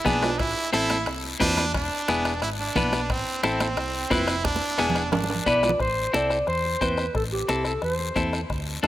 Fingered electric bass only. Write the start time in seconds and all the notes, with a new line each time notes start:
0.06 B1
0.40 A1
0.73 A1
1.07 C2
1.41 E2
1.74 E1
2.08 E1
2.42 G#1
2.76 B1
3.10 A1
3.44 A1
3.77 C2
4.11 F1
4.45 E1
4.79 E1
5.13 G#1
5.46 B1
5.80 A1
6.14 C2
6.48 E2
6.81 E2
7.15 A1
7.49 C2
7.83 E2
8.16 E2
8.50 D2
8.83 F2